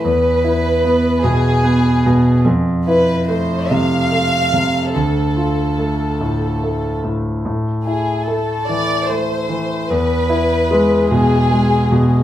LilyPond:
<<
  \new Staff \with { instrumentName = "Violin section" } { \time 6/8 \key e \phrygian \tempo 4. = 49 b'4. gis'4. | r8 b'8 c''8 f''4. | a'2~ a'8 r8 | r8 gis'8 a'8 d''8 c''4 |
b'4. gis'4. | }
  \new Staff \with { instrumentName = "Grand piano" } { \clef bass \time 6/8 \key e \phrygian e,8 e'8 b8 b,8 b8 b,8 | f,8 e'8 a8 c8 a8 c8 | d,8 f'8 a8 a,8 a8 a,8 | a,8 e'8 a8 e8 a8 e8 |
e,8 e'8 gis8 b,8 gis8 b,8 | }
>>